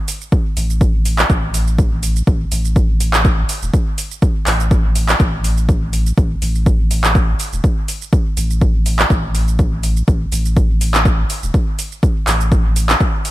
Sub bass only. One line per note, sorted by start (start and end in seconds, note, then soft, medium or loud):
0.57 1.24 A1 medium
1.30 2.22 A1 loud
2.27 2.45 A1 loud
2.52 3.44 A1 medium
3.63 3.70 E1 loud
4.47 5.15 A1 medium
5.20 6.12 A1 loud
6.18 6.35 A1 loud
6.42 7.34 A1 medium
7.53 7.61 E1 loud
8.37 9.05 A1 medium
9.10 10.02 A1 loud
10.08 10.26 A1 loud
10.32 11.24 A1 medium
11.43 11.51 E1 loud
12.27 12.95 A1 medium